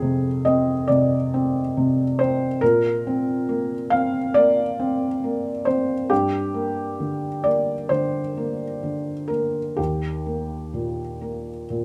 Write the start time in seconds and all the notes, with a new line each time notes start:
Already playing: F2 C4 G#4
0.02 C3
0.45 C4 D#5
0.88 C3 D5
1.34 C4
1.77 C3
2.19 C4 C5
2.61 A#2 A#4
3.07 C4
3.49 A#3
3.90 C4 F5
4.34 A#3 D5
4.80 C4
5.24 A#3
5.65 C4 C5
6.10 G2 G4
6.54 A#3
7.00 D3
7.44 A#3 D5
7.89 D3 C5
8.37 A#3
8.83 D3
9.28 A#3 A#4
9.77 D#2 G4
10.26 A#3
10.74 A#2
11.21 A#3
11.70 A#2